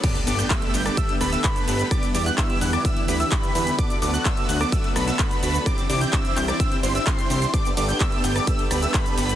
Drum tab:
CC |x---------------|----------------|----------------|----------------|
RD |----------------|----------------|----------------|----------------|
HH |xxoxxxoxxxoxxxox|xxoxxxoxxxoxxxox|xxoxxxoxxxoxxxox|xxoxxxoxxxoxxxox|
SH |xxxxx-xxx-xxxxxx|xxxxx-xxx-xxxxxx|xxxxx-xxx-xxxxxx|xxxxxxxxx-xxxxxx|
CP |----x-------x---|----x-------x---|----x-------x---|----x-x-----x---|
SD |-------r--r-----|r------r--------|-------r--r-----|r------r--------|
BD |o---o---o---o---|o---o---o---o---|o---o---o---o---|o---o---o---o---|

CC |----------------|
RD |--x---x---x---x-|
HH |xxoxxxoxxxoxxxox|
SH |xxxxx-xxx-xxxxxx|
CP |----x-------x---|
SD |-------r--r-----|
BD |o---o---o---o---|